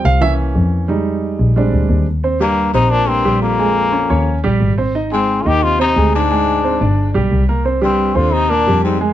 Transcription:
Already playing: F3 G3 C4
0.04 C2 F5
0.21 E3 A#3 C#4 E5
0.55 F2
0.88 G3 G#3 D#4
1.39 A#1
1.56 G3 G#3 C4 D4
1.72 D2
1.89 D#2
2.24 C4 C5
2.40 G2 G3 A#3 G4
2.73 A#1 C3 C4 D#4 C5
2.91 A#2 D4
3.07 G2 A#3 C4 A#4
3.25 A#1 G3 G4
3.41 F2 A#3
3.59 G#3 G#4
3.92 C#4 C#5
4.10 D#2 C#4 C#5
4.44 A#1 G3 G4
4.60 G#1
4.78 C4 C5
4.95 D#4 D#5
5.12 G#2 G#3 C4 G#4
5.41 D3 F4
5.45 D#2 D#3 D#4 G4 D#5
5.63 C3 F4
5.79 C3 C4 D#4 C5
5.96 D2 G#3 G#4
6.15 G#2 D4
6.30 G#3 G#4
6.64 C4 C5
6.81 G1 D4 D5
7.14 B1 G3 G4
7.31 C2
7.49 A#3 A#4
7.65 C4 C5
7.81 G2 G3 C4 G4
8.15 D#2 D3 C4 F4 C5
8.33 C3 D#4
8.50 A#2 A#3 D4 A#4
8.66 F2 G3 G4
8.84 G#2 C4
9.01 G#3 G#4

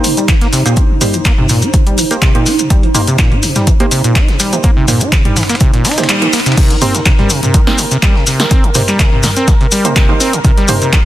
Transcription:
Already playing: A#3 D#4 G4 C5 A#5
0.04 C3, closed hi-hat, open hi-hat, maracas
0.17 G3, closed hi-hat, maracas
0.28 D#3, kick, snare, clap, closed hi-hat, maracas
0.41 A#3, snare, closed hi-hat
0.53 C3, snare, closed hi-hat, open hi-hat, maracas
0.66 A#2 A#3 D#4 G4 C5, closed hi-hat, maracas
0.76 D#4, kick, closed hi-hat, maracas
0.90 C3
1.01 G3 A#3 D#4 G4 C5, mid tom, open hi-hat, maracas
1.13 D#3, closed hi-hat, maracas
1.25 A#3, kick, snare, clap, closed hi-hat, maracas
1.38 C3, mid tom
1.49 A#2, closed hi-hat, mid tom, open hi-hat, maracas
1.62 D#4, closed hi-hat, maracas
1.73 C3, kick, closed hi-hat, maracas
1.87 G3, closed hi-hat
1.98 D#3, closed hi-hat, open hi-hat, maracas
2.11 A#3 D#4 G4 C5, closed hi-hat, maracas
2.22 C3, kick, snare, clap, closed hi-hat, maracas
2.35 A#2 A#3 D#4 G4 C5, closed hi-hat
2.46 D#4, snare, closed hi-hat, open hi-hat, maracas
2.59 C3, closed hi-hat, maracas
2.70 G3, kick, closed hi-hat, maracas
2.83 D#3, closed hi-hat
2.94 A#3 D#4 G4 C5, closed hi-hat, mid tom, open hi-hat, maracas
3.07 C3, closed hi-hat, maracas
3.18 A#2, kick, snare, clap, closed hi-hat, maracas
3.32 D#4, closed hi-hat, mid tom
3.43 C3, closed hi-hat, open hi-hat, maracas
3.55 G3, snare, closed hi-hat, mid tom, maracas
3.67 D#3, kick, closed hi-hat, maracas
3.80 A#3 D#4 G4 C5, closed hi-hat
3.91 C3, closed hi-hat, open hi-hat, maracas
4.04 A#2, closed hi-hat, maracas
4.15 D#4, kick, snare, clap, closed hi-hat, maracas
4.28 C3, snare, closed hi-hat
4.40 G3, snare, closed hi-hat, open hi-hat, maracas
4.53 D#3 A#3 D#4 G4 C5, closed hi-hat, maracas
4.63 A#3, kick, closed hi-hat, maracas
4.77 C3
4.88 A#2 A#3 D#4 G4 C5, mid tom, open hi-hat, maracas
5.00 D#4, closed hi-hat, maracas
5.12 C3, kick, snare, clap, closed hi-hat, maracas
5.25 G3, closed hi-hat, mid tom
5.36 D#3, snare, closed hi-hat, mid tom, open hi-hat, maracas
5.43 snare, closed hi-hat
5.49 A#3, snare, closed hi-hat, maracas
5.55 snare, closed hi-hat
5.60 C3, kick, closed hi-hat, maracas
5.74 A#2, closed hi-hat
5.85 D#4, snare, closed hi-hat, open hi-hat, maracas
5.91 snare, closed hi-hat
5.98 C3 A#3 D#4 G4 C5, snare, closed hi-hat, maracas
6.04 snare, closed hi-hat
6.09 G3, snare, clap, closed hi-hat, maracas
6.22 D#3 A#3 D#4 G4 C5, closed hi-hat
6.33 A#3, snare, closed hi-hat, open hi-hat, maracas
6.40 snare, closed hi-hat
6.46 C3, snare, closed hi-hat, maracas
6.52 snare, closed hi-hat
6.57 C3 A#4, kick, closed hi-hat, crash, maracas
6.70 D#3, closed hi-hat
6.82 A#3 C4 D#4 G4 C5, closed hi-hat, mid tom, open hi-hat, maracas
6.95 C3, closed hi-hat, maracas
7.06 C3, kick, snare, clap, closed hi-hat, maracas
7.19 G3, closed hi-hat, mid tom
7.30 C3, closed hi-hat, open hi-hat, maracas
7.43 C3, closed hi-hat, mid tom, maracas
7.54 D#3, kick, closed hi-hat, maracas
7.67 A#3 C4 D#4 G4 C5, snare
7.78 C3, closed hi-hat, open hi-hat, maracas
7.91 C3, closed hi-hat, maracas
8.03 G3, kick, snare, clap, closed hi-hat, maracas
8.16 C3, snare
8.27 C3, snare, closed hi-hat, open hi-hat, maracas
8.40 D#3 A#3 D#4 G4 C5, snare, closed hi-hat, maracas
8.51 C4, kick, closed hi-hat, maracas
8.64 C3, closed hi-hat
8.75 C3 A#3 D#4 G4 C5, mid tom, open hi-hat, maracas
8.88 G3, clap, closed hi-hat, maracas
8.99 C3, kick, snare, clap, closed hi-hat, maracas
9.12 C3, mid tom
9.23 D#3, snare, closed hi-hat, mid tom, open hi-hat, maracas
9.36 C4, closed hi-hat, maracas
9.48 C3, kick, snare, closed hi-hat, maracas
9.61 C3, closed hi-hat
9.72 G3, closed hi-hat, open hi-hat, maracas
9.85 C3 A#3 D#4 G4 C5, closed hi-hat, maracas
9.96 C3, kick, snare, clap, closed hi-hat, maracas
10.09 D#3 A#3 D#4 G4 C5
10.20 C4, snare, closed hi-hat, open hi-hat, maracas
10.33 C3, closed hi-hat, maracas
10.44 C3, kick, closed hi-hat, maracas
10.57 G3, closed hi-hat
10.68 C3 A#3 D#4 G4 C5, closed hi-hat, mid tom, open hi-hat, maracas
10.82 C3, closed hi-hat, maracas
10.93 D#3, kick, snare, clap, closed hi-hat, maracas

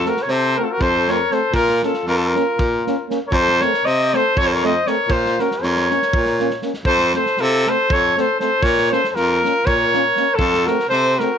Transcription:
0.03 A3 C4 F#4, snare
0.08 A#4
0.17 snare
0.22 A#4 C#5
0.27 C3 A4 C5, snare
0.57 A3 C4 F#4 A#4
0.64 F4 A4
0.71 F#4 A#4
0.80 F2 A4 C5, kick
1.08 A3 C4 A#4 C#5, snare
1.31 A3 C4 A4 C5, snare
1.53 A#2 F4 A#4, kick
1.68 snare
1.83 A#3 C#4 F4 A4, snare
1.94 snare
2.05 F2 F4 A#4, snare
2.15 F4 A4
2.25 F4 A#4
2.34 A#3 C#4, snare
2.58 A#2, kick
2.86 A#3 C#4, snare
3.09 A#3 C#4, snare
3.27 A4 A#4 C#5
3.32 F2 C5, kick
3.48 snare
3.60 A3 C4 A#4 C#5, snare
3.74 snare
3.84 C3 C5 D#5, snare
4.13 A3 C4 A4 C5, snare
4.36 F2 A4 C#5, kick
4.46 A4 C5
4.52 A#4 C#5
4.63 A3 C4 C5 D#5, snare
4.86 A3 C4 A#4 C#5, snare
5.08 A#2 F4 C5, kick
5.26 snare
5.38 A#3 C#4 F#4 A#4, snare
5.51 snare
5.62 F2 A#4 C#5, snare
5.76 snare
5.90 A#3 C#4, snare
6.02 snare
6.13 A#2, kick
6.25 snare
6.39 A#3 C#4, snare
6.50 snare
6.62 A#3 C#4, snare
6.73 snare
6.85 F2 A4 C5, kick
6.98 snare
7.14 A3 C4 A4 C5, snare
7.26 snare
7.37 C3 F4 A4, snare
7.65 A3 C4 A4, snare
7.69 C5
7.90 F2 A4 C#5, kick
8.17 A3 C4 A4 C5, snare
8.40 A3 C4 A4 C5, snare
8.62 A#2 A#4 C#5, kick
8.78 snare
8.91 A#3 C#4 A4 C5, snare
9.04 snare
9.09 F2 A4 C5
9.15 F4 A#4, snare
9.42 A#3 C#4, snare
9.65 A#2 A#4 C#5, kick
9.93 A#3 C#4, snare
10.16 A#3 C#4, snare
10.35 F2 F4 A4, kick
10.53 snare
10.65 A3 C4 F#4 A#4, snare
10.79 snare
10.89 C3 A4 C5, snare
11.17 A3 F#4 A#4, snare
11.22 C4

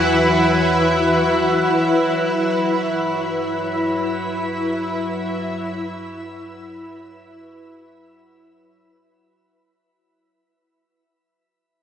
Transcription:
Already playing: E2 E3 F#3 E4 F#4 B4 F#5
2.14 G2

